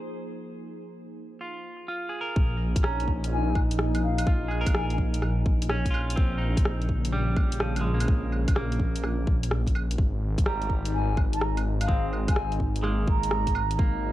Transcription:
Already playing: F3 A#3 D#4 G#4 C5
1.41 F4
1.88 F4
2.09 G#4
2.21 A#4
2.36 A#1, kick
2.47 D#4
2.76 kick, closed hi-hat
2.83 C#4 A#5, cross-stick
3.00 closed hi-hat
3.08 kick
3.24 closed hi-hat
3.32 G#5
3.55 kick, claves
3.71 closed hi-hat
3.79 cross-stick
3.95 closed hi-hat, claves
4.03 F5
4.18 closed hi-hat, claves
4.27 F4, kick
4.48 G#4, claves
4.61 A#4
4.66 kick, closed hi-hat, claves
4.75 G#5, cross-stick
4.90 G#5, closed hi-hat
4.98 kick
5.14 closed hi-hat
5.22 cross-stick, claves
5.46 kick
5.62 closed hi-hat
5.70 C#4, cross-stick
5.86 kick, closed hi-hat
5.91 F4, claves
6.10 closed hi-hat
6.16 C4, kick
6.35 C#3 D#4
6.57 kick, closed hi-hat
6.65 cross-stick
6.82 closed hi-hat
6.89 kick
7.05 closed hi-hat
7.13 G3
7.37 kick, claves
7.52 closed hi-hat
7.60 F3, cross-stick
7.76 closed hi-hat, claves
7.81 G#3
7.94 A#3
8.00 closed hi-hat, claves
8.08 kick
8.32 claves
8.48 kick, closed hi-hat, claves
8.55 A#3, cross-stick
8.72 closed hi-hat
8.79 kick
8.95 closed hi-hat
9.03 cross-stick, claves
9.27 kick
9.43 closed hi-hat
9.51 cross-stick
9.67 kick, closed hi-hat
9.75 claves
9.91 closed hi-hat
9.98 G#1, kick
10.17 D#4
10.38 kick, closed hi-hat
10.46 G3 A#5, cross-stick
10.62 closed hi-hat
10.70 kick
10.85 closed hi-hat
10.94 G#5
11.17 kick, claves
11.33 A#5, closed hi-hat
11.41 cross-stick
11.57 closed hi-hat, claves
11.81 F5, closed hi-hat, claves
11.88 G#3 C4, kick
12.13 claves
12.28 G#5, kick, closed hi-hat, claves
12.36 cross-stick
12.52 closed hi-hat
12.60 kick
12.76 closed hi-hat
12.83 G#3 A#3, cross-stick, claves
13.08 A#5, kick
13.23 closed hi-hat
13.31 cross-stick
13.47 kick, closed hi-hat
13.55 claves
13.71 closed hi-hat
13.79 A#3, kick

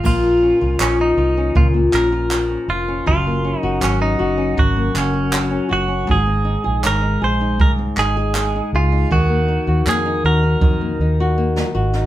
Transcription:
Already playing: F2 G#3 C4 F4
0.04 A#1 A#2 F4, kick, crash
0.23 A#3
0.42 C#4
0.61 C2 F4
0.80 A#1 F3 C#4, clap
0.99 C#4 D#4
1.17 C2 F4
1.37 C#4
1.55 C#2 A#2 F4, kick
1.74 A#3
1.93 A#1 C#4 A#4, clap
2.12 F4
2.31 F3, clap
2.50 C#4
2.68 F1 F4
2.88 C#4
3.06 F#1 F#2 F4, kick
3.27 A#3
3.45 C#4
3.60 F#1 D#4 F#4
3.81 G#1 F#3 C#4, clap
4.01 C#4 D#4
4.19 F#1 F#4
4.37 C#4
4.57 G#1 F#2 F#4, kick
4.76 A#3
4.94 F#1 C#4, clap
5.13 F#4
5.31 F#3, clap
5.51 C#4
5.69 F#1 F#4
5.88 C#4
6.07 G#1 G#2, kick
6.11 G#4
6.27 C4
6.45 D#4
6.64 A#1 G#4
6.84 G#1 G#3 A#4, clap
7.02 D#4
7.22 A#1 G#4 C5
7.41 D#4
7.59 C2 G#2 A#4, kick
7.78 C4
7.97 G#1 D#4 G#4, clap
8.17 G#4
8.35 G#3, clap
8.56 D#4
8.73 C#2 F4 G#4
8.92 D#4
9.10 D#2 D#3 F#4, kick
9.30 A#3
9.48 D#4
9.67 D#2 F#4
9.86 F2 A#3 G#4, clap
10.06 D#4
10.24 D#2 F#4 A#4
10.43 D#4
10.61 F2 D#3, kick
10.81 A#3
10.99 D#2 D#4
11.20 F#4
11.38 A#3
11.56 D#4, snare
11.75 G#1 F#4
11.93 D#4, snare

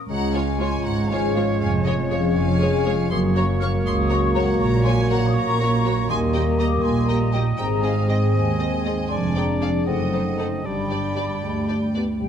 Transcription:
Already playing: A#2 C#4 F4 A#4 C#5 F5
0.08 C#2 C#3 F3 G#3 C#4 F4 C#5 F#5 A#5
0.33 G#3 C#4 F4 C#5 F5 G#5
0.60 G#3 F4 C#5 G#5 C6
0.84 G#1 G#2 C#4 F#5 A#5
1.09 G#3 F4 G#4 C#5 F5 G#5
1.34 G#3 C#4 F4 C#5 F5
1.59 F1 F2 F5 G#5
1.85 G#3 C#4 G#4 C#5 D#5 F#5
2.10 G#3 G#4 C#5 F5
2.36 F1 F2 C#4 F5 G#5
2.60 G#3 G#4 C#5
2.85 G#3 C#4 G#4 C#5
3.10 F#1 F#2 F#3 A#3 F#4 C#5 C6 D#6
3.35 A#3 C#4 F#4 C#5 A#5 C#6
3.60 A#3 F#4 C#5 C#6 F6
3.85 C#2 C#4 C6 D#6
4.09 A#3 F#4 A#4 C#5 A#5 C#6
4.34 A#3 C#4 F#4 C#5 F#5 A#5
4.59 A#1 A#2 A#5 C#6
4.84 A#3 F#4 C#5 G#5 C6
5.09 A#3 F#4 C#5 F#5 A#5
5.27 D#6
5.34 A#1 A#2 C#4 A#5 C#6
5.59 A#3 F#4 A#4 C#5
5.85 A#3 F#4 C#5
6.08 D#2 D#3 G3 A#3 G4 D#5 G#5 C6
6.34 A#3 G4 D#5 G5 A#5
6.58 A#3 G4 D#5 A#5 D6
6.82 A#1 A#2 D#4 G#5 C6
7.08 A#3 G4 A#4 D#5 G5 A#5
7.32 A#3 D#4 G4 D#5 G5
7.57 G#1 G#2 G#3 C4 G#4 G5 A#5
7.83 C4 D#4 G#4 D#5 F5 G#5
8.08 C4 G#4 D#5 G5
8.33 D#2 D#4 D#5 G#5
8.58 C4 G#4 C5 D#5
8.85 C4 G#4 D#5
9.09 F1 F2 D4 G#4 D5 G#5 C6
9.34 D4 G#4 D5 G5 A#5
9.60 D4 G#4 D5 F5 G#5
9.85 F#1 F#2 A3 C4 D#4 A4 D#5 F#5
10.12 D#4 A4 C5
10.37 D#4 A4 C5 F#5 A5
10.62 G1 G2 G3 D4 G4 D5 G5 B5
10.90 D4 G4 D5
11.17 D4 G4 D5
11.42 D2 G#3 D4
11.68 G3 D4 G4 D5
11.94 B3 D4 G4 D5
12.19 C2 C3 G3 G5

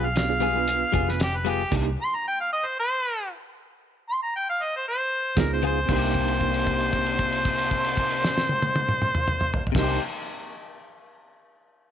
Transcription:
Already playing: B1
0.06 F5
0.16 B3 D4 F4 G4, snare, closed hi-hat
0.29 B3 D4 F4 G#4
0.40 G3 B3 F4 G#4, closed hi-hat
0.55 B3 D4 F4 B4
0.68 closed hi-hat
0.92 F1 G3 B3 F4 G#4, kick, closed hi-hat
1.09 B4, snare
1.20 G4, snare, closed hi-hat
1.36 B4
1.45 G3 B3 F4 G#4, closed hi-hat
1.50 G4
1.71 C2 A#3 D4 D#4 G4, kick, closed hi-hat, crash
2.01 C6
2.15 A#5
2.28 G5
2.41 F5
2.53 D#5
2.66 C5
2.80 C5
4.09 C6
4.23 A#5
4.36 G5
4.50 F5
4.63 D#5
4.76 C5
4.88 C5
5.36 C#2 B3 D#4 F4 G#4 A#4, kick, snare, closed hi-hat
5.53 C5
5.62 C#3 B3 F4 G#4 C5, closed hi-hat
5.86 C2 C3 A#3 D4 D#4, kick, crash
5.90 A#3 G4 C5
5.96 G4
6.15 kick, crash
6.28 crash
6.41 kick, crash
6.54 crash
6.67 kick, crash
6.80 crash
6.93 kick, crash
7.06 crash
7.19 kick, crash
7.32 crash
7.45 kick, crash
7.58 crash
7.71 kick, crash
7.84 crash
7.97 kick, crash
8.11 crash
8.24 snare
8.38 snare
8.49 high tom
8.62 high tom
8.76 high tom
8.89 mid tom
9.02 mid tom
9.15 mid tom
9.28 mid tom
9.41 mid tom
9.54 floor tom
9.67 floor tom
9.72 C2 C3 A#3 D4, kick, snare, crash
9.76 A#3 D#4 G4 C5
9.83 G4

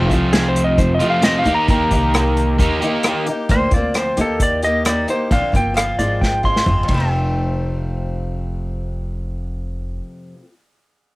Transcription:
Already playing: F2 C3 F3 A3 C4 F4
0.10 C2 F3 A3 C4 F4, kick, closed hi-hat
0.33 F3 A3 C4 F4 G#4, snare, closed hi-hat
0.49 C5
0.56 closed hi-hat
0.64 D#5
0.78 F1 C5, kick, closed hi-hat
0.95 D#5
1.00 F2 C3 F3 A3 C4 F4, closed hi-hat
1.10 F5
1.22 F2 C3 F3 A3 C4 F4 D#5, snare, closed hi-hat
1.39 F5
1.43 D#2 D#3 D#4 G4, closed hi-hat
1.48 A#3
1.55 A#5
1.68 D#3 A#3 D#4 G4 A#5, kick, closed hi-hat
1.91 C2 A#3 D#4 G4, kick, closed hi-hat
2.14 D#3 A#3 D#4 G4, cross-stick, closed hi-hat
2.37 closed hi-hat
2.58 D#2 D#3 A#3 D#4 G4, kick, closed hi-hat
2.82 D#3 D#4 G4, closed hi-hat
2.86 A#3
3.03 D#3 A#3 D#4 G4, cross-stick, closed hi-hat
3.26 A#3 D#4 G4, closed hi-hat
3.49 D2 D3 F3 A#3 C4 F4 C5, kick, closed hi-hat
3.71 D2 C4 F4 D5, kick, closed hi-hat
3.77 A#3
3.94 F3 A#3 C4 C5, cross-stick, closed hi-hat
3.99 F4
4.17 D#2 D#3 A#3 D#4 G4, closed hi-hat
4.21 A4
4.40 D5, kick, closed hi-hat
4.63 A#3 D#4 G4 D#5, closed hi-hat
4.85 D#3 A#3 D#4 G4 D5, cross-stick, closed hi-hat
5.08 A#3 D#4 G4 C5, closed hi-hat
5.31 A#1 A#2 D3 F3 A#3 C4 F4 F5, kick, closed hi-hat
5.52 G1 F3 A#3 C4 F4, kick, closed hi-hat
5.56 G5
5.74 F3 A#3 C4 F4 F5, cross-stick, closed hi-hat
5.99 G#1 G#2 D#3 F3 G#3 C4 F4 D5, closed hi-hat
6.21 G5, kick, snare
6.43 F3 G#3 C4 F4 C6, kick
6.56 snare
6.66 G1 F3 G#3 C4 F4, mid tom
6.83 F2
6.88 F1 C3 F3, kick, ride
6.94 A3 C4
7.00 F4

